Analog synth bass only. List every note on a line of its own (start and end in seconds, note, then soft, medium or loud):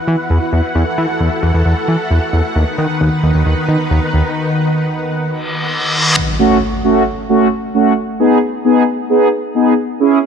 0.08 0.16 E3 loud
0.30 0.39 E2 loud
0.53 0.61 E2 loud
0.75 0.84 E2 loud
0.98 1.06 E3 loud
1.20 1.29 E2 medium
1.43 1.51 E2 loud
1.54 1.63 E2 loud
1.66 1.74 E2 loud
1.88 1.97 E3 medium
2.11 2.19 E2 loud
2.33 2.42 E2 medium
2.56 2.64 D#2 loud
2.78 2.87 D#3 loud
3.01 3.09 D#2 loud
3.23 3.32 D#2 loud
3.35 3.43 D#2 loud
3.46 3.54 D#2 loud
3.69 3.77 D#3 medium
3.91 3.99 D#2 loud
4.14 4.22 D#2 medium